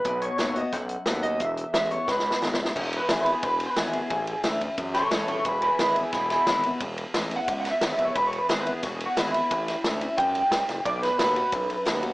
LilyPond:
<<
  \new Staff \with { instrumentName = "Clean electric guitar" } { \time 4/4 \key e \major \tempo 4 = 178 b'8 cis''8 cis''8 dis''8 fis''4. dis''8 | e''4 e''8 cis''8 b'4. r8 | \tuplet 3/2 { r4 b'8 gis'8 b'8 gis'8 b'8 gis'8 b'8 gis'8 gis'4~ } | gis'4. r4 <a' cis''>8 <a' cis''>8 <a' cis''>8 |
<gis' b'>8 <gis' b'>8 <gis' b'>8 <e' gis'>8 <e' gis'>8 <e' gis'>8 e'8 r8 | r4 \tuplet 3/2 { r4 fis''8 e''8 fis''8 e''8 cis''8 e''8 cis''8 } | \tuplet 3/2 { b'8 cis''8 b'8 gis'8 b'8 gis'8 fis'8 gis'8 fis'8 e'8 e'4~ } | e'4. r8 g''2 |
d''8 b'8 b'2. | }
  \new Staff \with { instrumentName = "Steel-string acoustic guitar" } { \time 4/4 \key e \major << { r4 <dis a b fis'>8 <b fis'>8 r4 <dis a b fis'>8 <b fis'>8 | r4 <e gis b e'>8 <b e'>8 r4 <e gis b e'>8 <b e'>8 | r4 <e gis b e'>8 <b e'>8 r4 <e gis b e'>8 <b e'>8 | r4 <e a cis' e'>8 <cis' e'>8 r4 <e a cis' e'>8 <cis' e'>8 |
r4 <e gis b e'>8 <b e'>8 r4 <e gis b e'>8 <b e'>8 | r4 <e gis b e'>8 <b e'>8 r4 <e gis b e'>8 <b e'>8 | r4 <e gis b e'>8 <b e'>8 r4 <e gis b e'>8 <b e'>8 | r4 <e a cis' e'>8 <cis' e'>8 r2 |
r4 <dis a b fis'>8 <b fis'>8 r4 <dis a b fis'>8 <b fis'>8 | } \\ { b,2 r2 | e,2 b,2 | e,2 b,2 | a,2 e,2 |
e,2 b,2 | e,2 b,2 | e,2 b,2 | a,2 gis,4 a,4 |
b,2 fis,2 | } >> }
  \new Staff \with { instrumentName = "Analog synth bass" } { \clef bass \time 4/4 \key e \major b,,4 dis,4 b,,4 dis,4 | e,,4 a,,4 cis,4 gis,,8 d,,8 | e,,4 gis,,4 e,,4 gis,,4 | a,,4 d,4 fis,4 cis,8 dis,,8 |
e,,4 gis,,4 e,,4 gis,,4 | e,,4 a,,4 cis,4 gis,,8 d,,8 | e,,4 gis,,4 e,,4 gis,,4 | a,,4 d,4 fis,4 cis,8 fis,,8 |
b,,4 dis,4 b,,4 dis,4 | }
  \new DrumStaff \with { instrumentName = "Drums" } \drummode { \time 4/4 <hh bd>8 hh8 <hh sn>8 hh8 <hh bd sn>8 hh8 <hh sn>8 hh8 | <hh bd>8 hh8 <hh sn>8 hh8 \tuplet 3/2 { <bd sn>8 sn8 sn8 sn8 sn8 sn8 } | <cymc bd>8 cymr8 <cymr sn>8 cymr8 <bd cymr>8 cymr8 <cymr sn>8 cymr8 | <bd cymr>8 cymr8 <cymr sn>8 cymr8 <bd cymr>8 <cymr sn>8 <cymr sn>8 cymr8 |
<bd cymr>8 cymr8 <cymr sn>8 cymr8 <bd cymr sn>8 <cymr sn>8 <cymr sn>8 cymr8 | <bd cymr>8 cymr8 <cymr sn>8 cymr8 <bd cymr>8 <cymr sn>8 <cymr sn>8 cymr8 | <bd cymr>8 cymr8 <cymr sn>8 cymr8 <bd cymr sn>8 cymr8 <cymr sn>8 cymr8 | <bd cymr>8 <cymr sn>8 <cymr sn>8 cymr8 <bd cymr>8 cymr8 <cymr sn>8 <cymr sn>8 |
<bd cymr>8 <cymr sn>8 <cymr sn>8 cymr8 <bd cymr>8 cymr8 <cymr sn>8 cymr8 | }
>>